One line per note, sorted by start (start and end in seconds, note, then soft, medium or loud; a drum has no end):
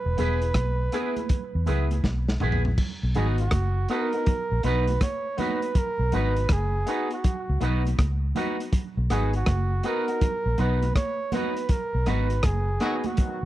0.00 2.01 B4 loud
0.06 0.17 E1 medium
0.17 0.52 E1 medium
0.17 0.43 B3 medium
0.17 0.39 B3 medium
0.17 0.43 E4 medium
0.17 0.39 E4 medium
0.17 0.44 G#4 loud
0.17 0.39 G#4 medium
0.17 0.40 B4 medium
0.17 closed hi-hat medium
0.17 low conga medium
0.42 closed hi-hat medium
0.54 0.88 B1 medium
0.54 kick medium
0.54 cross-stick loud
0.54 closed hi-hat medium
0.54 high conga medium
0.92 1.18 B3 medium
0.92 1.13 B3 medium
0.92 1.18 E4 medium
0.92 1.13 E4 medium
0.92 1.13 G#4 medium
0.92 1.18 G#4 loud
0.92 1.14 B4 loud
0.92 cross-stick medium
0.92 closed hi-hat medium
0.92 high conga medium
1.16 closed hi-hat soft
1.16 high conga medium
1.29 kick loud
1.29 closed hi-hat medium
1.29 low conga medium
1.55 1.66 E2 medium
1.66 2.01 C#2 medium
1.66 1.87 B3 medium
1.66 1.92 B3 medium
1.66 1.92 E4 medium
1.66 1.87 E4 medium
1.66 1.88 G#4 medium
1.66 1.92 G#4 medium
1.66 1.88 B4 loud
1.66 closed hi-hat medium
1.66 low conga medium
1.91 closed hi-hat medium
1.91 high conga medium
2.04 2.37 B1 medium
2.04 kick loud
2.04 snare medium
2.04 high conga soft
2.28 snare medium
2.40 2.75 A#1 medium
2.40 2.61 B3 medium
2.40 2.66 B3 medium
2.40 2.62 E4 medium
2.40 2.67 E4 medium
2.40 2.62 G#4 medium
2.40 2.67 G#4 medium
2.40 2.62 B4 medium
2.40 mid tom medium
2.40 high conga medium
2.40 low conga medium
2.52 floor tom medium
2.65 floor tom medium
2.78 kick loud
2.78 crash loud
2.78 low conga medium
3.03 3.14 B1 medium
3.15 3.49 G#1 medium
3.15 3.36 B3 medium
3.15 3.41 B3 medium
3.15 3.36 D#4 medium
3.15 3.41 D#4 medium
3.15 3.41 F#4 loud
3.15 3.36 F#4 medium
3.15 3.27 G#4 medium
3.15 3.36 B4 medium
3.15 closed hi-hat medium
3.15 low conga medium
3.38 3.87 F#4 medium
3.38 closed hi-hat medium
3.51 3.85 F#1 medium
3.51 kick loud
3.51 cross-stick loud
3.51 closed hi-hat medium
3.51 high conga medium
3.89 4.10 B3 medium
3.89 4.12 B3 medium
3.89 4.10 D#4 medium
3.89 4.13 D#4 medium
3.89 4.11 F#4 loud
3.89 4.13 F#4 loud
3.89 4.60 A#4 loud
3.89 4.11 B4 loud
3.89 closed hi-hat medium
4.13 4.29 B3 medium
4.13 4.29 D#4 medium
4.13 4.29 F#4 medium
4.13 closed hi-hat soft
4.26 kick loud
4.26 closed hi-hat loud
4.26 low conga medium
4.52 4.63 A#1 medium
4.63 4.97 B1 medium
4.63 4.89 B3 medium
4.63 4.84 B3 medium
4.63 4.89 D#4 medium
4.63 4.85 D#4 medium
4.63 4.89 F#4 loud
4.63 4.85 F#4 medium
4.63 5.04 B4 loud
4.63 4.85 B4 loud
4.63 closed hi-hat medium
4.63 low conga medium
4.87 closed hi-hat medium
4.87 high conga medium
5.01 5.41 C#5 loud
5.01 kick loud
5.01 cross-stick medium
5.01 closed hi-hat medium
5.01 high conga medium
5.37 5.63 B3 medium
5.37 5.59 B3 medium
5.37 5.63 D#4 medium
5.37 5.59 D#4 medium
5.37 5.64 F#4 loud
5.37 5.59 F#4 medium
5.37 5.79 B4 loud
5.37 5.60 B4 medium
5.37 closed hi-hat medium
5.37 high conga medium
5.37 low conga medium
5.62 closed hi-hat medium
5.75 6.16 A#4 loud
5.75 kick loud
5.75 closed hi-hat medium
5.75 low conga medium
5.99 6.11 B1 medium
6.12 6.46 G#1 medium
6.12 6.38 B3 loud
6.12 6.33 B3 medium
6.12 6.38 D#4 medium
6.12 6.33 D#4 medium
6.12 6.38 F#4 loud
6.12 6.34 F#4 medium
6.12 6.34 B4 medium
6.12 6.54 B4 loud
6.12 closed hi-hat medium
6.12 low conga medium
6.36 closed hi-hat medium
6.49 6.83 F#1 medium
6.49 7.12 G#4 loud
6.49 kick loud
6.49 cross-stick loud
6.49 closed hi-hat medium
6.49 high conga medium
6.86 7.12 B3 loud
6.86 7.07 B3 medium
6.86 7.12 D#4 medium
6.86 7.08 D#4 medium
6.86 7.12 F#4 loud
6.86 7.08 F#4 medium
6.86 7.08 B4 medium
6.86 closed hi-hat medium
7.11 7.83 F#4 medium
7.11 closed hi-hat soft
7.24 kick loud
7.24 closed hi-hat loud
7.24 low conga medium
7.49 7.60 C#2 medium
7.61 7.94 B1 loud
7.61 7.86 B3 medium
7.61 7.82 B3 medium
7.61 7.86 D#4 medium
7.61 7.82 D#4 medium
7.61 7.87 F#4 loud
7.61 7.82 F#4 medium
7.61 7.82 B4 medium
7.61 closed hi-hat medium
7.61 low conga medium
7.85 closed hi-hat medium
7.85 high conga medium
7.99 8.31 C#2 medium
7.99 kick loud
7.99 cross-stick loud
7.99 closed hi-hat medium
7.99 high conga medium
8.35 8.56 B3 medium
8.35 8.61 B3 medium
8.35 8.56 D#4 medium
8.35 8.61 D#4 medium
8.35 8.56 F#4 medium
8.35 8.61 F#4 loud
8.35 8.56 B4 medium
8.35 closed hi-hat medium
8.35 high conga medium
8.35 low conga medium
8.60 closed hi-hat medium
8.73 kick loud
8.73 closed hi-hat medium
8.73 low conga medium
8.97 9.09 B1 loud
9.10 9.43 G#1 medium
9.10 9.35 B3 medium
9.10 9.30 B3 medium
9.10 9.31 D#4 medium
9.10 9.35 D#4 medium
9.10 9.35 F#4 loud
9.10 9.31 F#4 medium
9.10 9.33 G#4 medium
9.10 9.31 B4 medium
9.10 cross-stick medium
9.10 closed hi-hat medium
9.10 low conga medium
9.33 9.88 F#4 medium
9.33 closed hi-hat medium
9.46 9.80 F#1 loud
9.46 kick loud
9.46 cross-stick loud
9.46 closed hi-hat medium
9.46 high conga medium
9.83 10.06 B3 medium
9.83 10.04 B3 medium
9.83 10.07 D#4 medium
9.83 10.05 D#4 medium
9.83 10.07 F#4 loud
9.83 10.05 F#4 medium
9.83 10.62 A#4 loud
9.83 10.05 B4 medium
9.83 closed hi-hat medium
10.08 10.23 B3 medium
10.08 10.23 D#4 medium
10.08 10.24 F#4 medium
10.08 closed hi-hat medium
10.21 kick loud
10.21 closed hi-hat loud
10.21 low conga medium
10.46 10.57 A#1 medium
10.58 10.92 B1 medium
10.58 10.83 B3 medium
10.58 10.79 B3 medium
10.58 10.84 D#4 medium
10.58 10.79 D#4 medium
10.58 10.84 F#4 loud
10.58 10.79 F#4 medium
10.58 10.79 B4 medium
10.58 10.96 B4 loud
10.58 closed hi-hat medium
10.58 low conga medium
10.82 muted clean electric guitar stroke soft
10.82 closed hi-hat medium
10.82 high conga medium
10.95 11.35 C#5 loud
10.95 kick loud
10.95 cross-stick loud
10.95 closed hi-hat medium
10.95 high conga medium
11.32 11.57 B3 loud
11.32 11.53 B3 medium
11.32 11.58 D#4 medium
11.32 11.53 D#4 medium
11.32 11.58 F#4 loud
11.32 11.53 F#4 medium
11.32 11.72 B4 medium
11.32 11.54 B4 loud
11.32 closed hi-hat medium
11.32 high conga medium
11.32 low conga medium
11.57 closed hi-hat medium
11.69 12.10 A#4 loud
11.69 kick loud
11.69 closed hi-hat medium
11.69 low conga medium
11.95 12.06 B1 medium
12.06 12.40 G#1 medium
12.06 12.27 B3 medium
12.06 12.32 B3 loud
12.06 12.27 D#4 medium
12.06 12.32 D#4 medium
12.06 12.28 F#4 medium
12.06 12.32 F#4 loud
12.06 12.27 B4 medium
12.06 12.46 B4 medium
12.06 cross-stick medium
12.06 closed hi-hat medium
12.06 low conga medium
12.30 closed hi-hat medium
12.43 12.77 F#1 medium
12.43 13.08 G#4 medium
12.43 kick loud
12.43 cross-stick loud
12.43 closed hi-hat medium
12.43 high conga medium
12.80 12.96 D#3 loud
12.80 12.96 F#3 loud
12.80 13.01 B3 medium
12.80 13.06 B3 medium
12.80 12.96 B3 medium
12.80 13.06 D#4 medium
12.80 13.01 D#4 medium
12.80 12.96 F#4 loud
12.80 13.02 F#4 medium
12.80 13.06 F#4 loud
12.80 13.02 B4 medium
12.80 cross-stick medium
12.80 closed hi-hat medium
12.80 high conga medium
13.04 13.45 F#4 medium
13.04 closed hi-hat soft
13.04 high conga medium
13.17 13.39 D#3 medium
13.17 13.39 F#3 medium
13.17 13.39 B3 medium
13.17 13.39 F#4 medium
13.17 kick loud
13.17 closed hi-hat medium
13.17 low conga medium